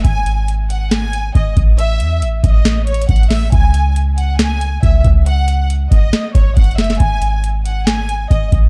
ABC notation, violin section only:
X:1
M:4/4
L:1/8
Q:1/4=138
K:F#dor
V:1 name="Violin section"
g2 z f g2 d z | e2 z d2 c f e | g2 z f g2 e z | f2 z d2 c f e |
g2 z f g2 d z |]